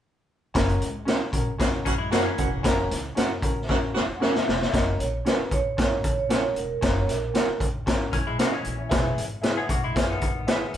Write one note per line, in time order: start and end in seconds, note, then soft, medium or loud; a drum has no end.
0.54 0.75 F#1 loud
0.54 0.86 C#4 loud
0.54 0.86 F#4 medium
0.54 0.86 A#4 loud
0.54 kick loud
0.54 snare loud
0.54 closed hi-hat medium
0.69 closed hi-hat soft
0.81 1.20 C#2 medium
0.81 closed hi-hat medium
1.05 1.22 C#4 medium
1.05 1.20 C#4 medium
1.05 1.22 F#4 medium
1.05 1.20 F#4 medium
1.05 1.23 A#4 medium
1.05 1.21 A#4 medium
1.05 1.21 F#5 medium
1.05 snare medium
1.05 closed hi-hat medium
1.32 1.52 A#1 medium
1.32 1.48 C#4 medium
1.32 1.49 F#4 medium
1.32 1.49 A#4 medium
1.32 kick medium
1.32 closed hi-hat medium
1.58 1.79 C#2 medium
1.58 1.68 C#3 medium
1.58 1.68 A#3 medium
1.58 1.90 C#4 medium
1.58 1.90 F#4 medium
1.58 1.68 F#4 medium
1.58 1.91 A#4 medium
1.58 kick medium
1.58 snare loud
1.58 closed hi-hat medium
1.85 2.25 F#2 medium
1.85 1.94 C#3 medium
1.85 1.98 E3 medium
1.85 1.94 A#3 medium
1.85 1.98 C#4 medium
1.85 1.95 F#4 loud
1.85 kick medium
1.85 closed hi-hat medium
1.98 2.11 G#3 medium
1.98 2.11 E4 medium
2.11 2.61 C#3 medium
2.11 2.62 A#3 medium
2.11 2.25 A#3 medium
2.11 2.42 C#4 medium
2.11 2.25 C#4 medium
2.11 2.61 F#4 medium
2.11 2.43 F#4 medium
2.11 2.24 F#4 medium
2.11 2.25 F#4 medium
2.11 2.43 A#4 medium
2.11 2.25 A#4 medium
2.11 2.25 F#5 medium
2.11 snare loud
2.11 closed hi-hat medium
2.25 3.00 E3 medium
2.25 2.99 C#4 medium
2.38 2.64 E1 medium
2.38 2.48 C#4 medium
2.38 2.49 F#4 medium
2.38 2.49 A#4 medium
2.38 2.49 F#5 medium
2.38 kick medium
2.38 closed hi-hat medium
2.63 2.84 F#1 loud
2.63 2.95 C#4 loud
2.63 2.95 F#4 loud
2.63 2.96 A#4 loud
2.63 kick loud
2.63 snare loud
2.63 closed hi-hat medium
2.91 3.10 C#2 medium
2.91 snare soft
2.91 closed hi-hat medium
3.15 3.37 F#2 medium
3.15 3.31 C#4 medium
3.15 3.30 C#4 medium
3.15 3.32 F#4 medium
3.15 3.30 F#4 medium
3.15 3.32 A#4 medium
3.15 3.30 A#4 medium
3.15 3.30 F#5 loud
3.15 snare loud
3.15 closed hi-hat medium
3.42 3.72 C#2 medium
3.42 3.58 C#4 medium
3.42 3.58 F#4 medium
3.42 3.59 A#4 medium
3.42 kick medium
3.42 closed hi-hat medium
3.69 3.78 C#3 medium
3.69 3.78 A#3 medium
3.69 4.00 C#4 medium
3.69 4.00 F#4 medium
3.69 3.78 F#4 medium
3.69 4.01 A#4 medium
3.69 kick medium
3.69 snare medium
3.94 4.05 F#2 medium
3.94 4.03 C#3 medium
3.94 4.03 A#3 medium
3.94 4.03 F#4 loud
3.94 snare medium
4.08 4.37 E2 medium
4.15 4.22 F#5 medium
4.20 4.71 C#3 medium
4.20 4.71 A#3 medium
4.20 4.52 C#4 medium
4.20 4.34 C#4 medium
4.20 4.52 F#4 medium
4.20 4.34 F#4 medium
4.20 4.71 F#4 medium
4.20 4.53 A#4 medium
4.20 4.35 A#4 medium
4.20 4.76 E5 loud
4.20 4.35 F#5 medium
4.20 snare medium
4.35 snare medium
4.48 4.67 E1 medium
4.48 snare medium
4.62 snare medium
4.72 4.93 F#1 loud
4.72 5.04 C#4 medium
4.72 5.05 F#4 medium
4.72 5.05 A#4 medium
4.72 4.85 D#5 medium
4.72 kick medium
4.72 snare loud
4.72 closed hi-hat medium
5.00 5.19 A#1 medium
5.00 5.11 C#5 medium
5.00 closed hi-hat medium
5.25 5.56 C#4 medium
5.25 5.39 C#4 medium
5.25 5.57 F#4 medium
5.25 5.39 F#4 medium
5.25 5.57 A#4 medium
5.25 5.39 A#4 medium
5.25 5.53 B4 medium
5.25 5.39 F#5 medium
5.25 snare medium
5.25 closed hi-hat medium
5.39 muted upright bass stroke soft
5.51 5.71 C#2 medium
5.51 6.18 C#5 medium
5.51 kick medium
5.51 closed hi-hat medium
5.77 5.98 G#1 medium
5.77 6.09 C#4 medium
5.77 6.09 F#4 medium
5.77 6.09 A#4 medium
5.77 kick medium
5.77 snare loud
5.77 closed hi-hat medium
6.04 6.43 A#1 medium
6.04 kick medium
6.04 closed hi-hat medium
6.19 6.58 C#5 medium
6.29 6.43 C#4 medium
6.29 6.61 C#4 medium
6.29 6.43 F#4 medium
6.29 6.61 F#4 medium
6.29 6.43 A#4 medium
6.29 6.62 A#4 medium
6.29 6.43 F#5 medium
6.29 snare medium
6.29 closed hi-hat medium
6.56 6.76 E1 medium
6.56 6.82 A#4 medium
6.56 closed hi-hat medium
6.81 7.02 F#1 loud
6.81 7.13 C#4 medium
6.81 7.14 F#4 medium
6.81 7.14 A#4 loud
6.81 7.10 C#5 medium
6.81 kick medium
6.81 snare loud
6.81 closed hi-hat medium
7.09 7.28 A#1 medium
7.09 7.58 A#4 medium
7.09 snare soft
7.09 closed hi-hat medium
7.34 7.65 C#4 medium
7.34 7.48 C#4 medium
7.34 7.66 F#4 medium
7.34 7.48 F#4 medium
7.34 7.48 A#4 medium
7.34 7.66 A#4 medium
7.34 7.48 F#5 medium
7.34 snare loud
7.34 closed hi-hat medium
7.48 muted upright bass stroke soft
7.60 7.80 C#2 medium
7.60 kick medium
7.60 closed hi-hat medium
7.86 8.07 G#1 medium
7.86 8.13 C#4 medium
7.86 8.13 F#4 medium
7.86 8.14 A#4 medium
7.86 kick medium
7.86 snare loud
7.86 closed hi-hat medium
8.13 8.39 A#1 medium
8.13 8.26 E3 medium
8.13 8.26 C#4 medium
8.13 kick medium
8.13 closed hi-hat medium
8.26 8.39 G#3 medium
8.26 8.39 E4 medium
8.26 8.39 G#4 medium
8.39 8.59 C#2 medium
8.39 8.53 A#3 medium
8.39 8.52 C#4 medium
8.39 8.53 F#4 medium
8.39 8.52 F#4 medium
8.39 8.52 A#4 medium
8.39 8.53 A#4 medium
8.39 8.53 F#5 medium
8.39 snare loud
8.39 closed hi-hat medium
8.52 9.28 E3 medium
8.52 9.28 C#4 medium
8.52 8.77 F#4 medium
8.52 8.77 D#5 medium
8.64 8.85 A#1 medium
8.64 closed hi-hat medium
8.78 8.88 E4 medium
8.78 9.03 C#5 medium
8.89 9.11 E1 loud
8.89 9.22 E4 loud
8.89 9.22 G#4 medium
8.89 9.22 B4 loud
8.89 kick loud
8.89 snare loud
8.89 closed hi-hat medium
9.18 9.57 G#1 medium
9.18 closed hi-hat medium
9.42 9.74 E4 medium
9.42 9.57 E4 medium
9.42 9.74 G#4 medium
9.42 9.57 G#4 medium
9.42 9.75 B4 medium
9.42 9.57 B4 medium
9.42 9.57 E5 medium
9.42 snare loud
9.42 closed hi-hat medium
9.57 9.70 B3 medium
9.57 9.70 G#4 medium
9.69 9.89 B1 medium
9.69 9.83 A#3 medium
9.69 9.83 F#4 medium
9.69 kick medium
9.69 closed hi-hat medium
9.84 9.96 G#3 medium
9.84 9.96 E4 medium
9.94 10.15 F#1 medium
9.94 10.10 E3 medium
9.94 10.09 C#4 medium
9.94 10.26 E4 medium
9.94 10.27 G#4 medium
9.94 10.27 B4 medium
9.94 kick medium
9.94 snare loud
9.94 closed hi-hat medium
10.10 10.77 D#3 medium
10.10 10.77 B3 medium
10.21 10.61 G#1 medium
10.21 kick medium
10.21 closed hi-hat medium
10.47 10.61 E4 medium
10.47 10.77 G#4 medium
10.47 10.61 G#4 medium
10.47 10.62 B4 medium
10.47 10.77 B4 medium
10.47 10.77 E5 medium
10.47 10.62 E5 medium
10.47 snare loud
10.47 closed hi-hat medium
10.74 10.77 F#1 medium
10.74 closed hi-hat medium